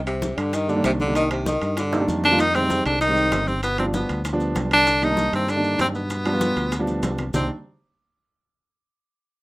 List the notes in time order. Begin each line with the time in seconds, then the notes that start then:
Already playing: C2
0.06 C3 C4, high conga, high timbale, maracas
0.22 high bongo, high conga, low timbale, maracas
0.37 G2 D3 D4, high conga, high timbale, maracas
0.53 D#3 D#4, high bongo, high conga, high timbale, maracas
0.68 D3 D#3 G3 A#3 D4, high conga, maracas
0.76 D#3 G3 A#3 D4
0.83 C2 C3 C4, high bongo, low bongo, high conga, high timbale, low timbale, maracas
0.99 D3 D4, high conga, maracas
1.07 D#3 G3 A#3 D4
1.15 D#3 D#4, high bongo, high timbale, maracas
1.30 C3 C4, high bongo, high conga, high timbale, maracas
1.46 D#3 D#4, high bongo, high conga, low timbale, maracas
1.62 G2, high conga, high timbale, maracas
1.77 D3 D4, high bongo, high conga, high timbale, maracas
1.92 D#3 G3 A#3 D#4, high bongo, high conga, high timbale, maracas
2.00 D#3 G3 A#3 D4
2.08 F2, low bongo, high conga, maracas
2.24 D3 D4, low bongo, low timbale, maracas
2.31 D#3 G3 A#3 F4
2.39 D#3 D#4, high bongo, high timbale, maracas
2.54 C3 D#3 G3 G#3 C4, high conga, high timbale, maracas
2.62 D#3 G3 G#3 C4
2.70 high bongo, high conga, low timbale, maracas
2.84 C2 D3 D4, high conga, high timbale, maracas
3.01 D#3 D#4, high bongo, high conga, high timbale, maracas
3.08 D#3 G3 G#3 C4
3.17 high conga, maracas
3.32 G1, high bongo, low bongo, high conga, high timbale, low timbale, maracas
3.47 C3 C4, high conga, maracas
3.62 B2 B3, high bongo, high conga, high timbale, maracas
3.78 C3 F3 G3 B3 C4 D4, high bongo, high conga, high timbale, maracas
3.86 F3 G3 B3 D4
3.94 B2 B3, high bongo, high conga, low timbale, maracas
4.09 D2, high conga, high timbale, maracas
4.25 high bongo, high conga, high timbale, maracas
4.33 F3 G3 B3 D4
4.40 high bongo, high conga, maracas
4.55 C2, high bongo, low bongo, high conga, high timbale, low timbale, maracas
4.71 D3 D4, high bongo, high timbale, maracas
4.86 high bongo, high conga, high timbale, maracas
5.02 D#3 G3 A#3 D4 D#4, high conga, high timbale, maracas
5.10 D#3 G3 A#3 D4
5.17 high bongo, high conga, low timbale, maracas
5.33 G2 C3 C4, high conga, high timbale, maracas
5.48 D3 D4, high bongo, high conga, high timbale, maracas
5.56 D#3 G3 A#3 D4
5.64 high conga, maracas
5.79 G2 C3 C4, high bongo, low bongo, high conga, high timbale, low timbale, maracas
5.94 B2 B3, maracas
6.10 high bongo, high conga, high timbale, maracas
6.25 F3 G3 B3 D4, high conga, high timbale, maracas
6.33 F3 G3 B3 F4
6.41 high bongo, high conga, low timbale, maracas
6.57 D2, high conga, high timbale, maracas
6.72 low bongo, high conga, high timbale, maracas
6.79 F3 G3 B3 D4
6.87 low bongo, high conga, maracas
7.03 C2, low bongo, high conga, high timbale, low timbale, maracas
7.18 low bongo, high conga, high timbale, maracas
7.34 C2 C3 D#3 G3 A#3 C4 D4, low bongo, low conga, low timbale, maracas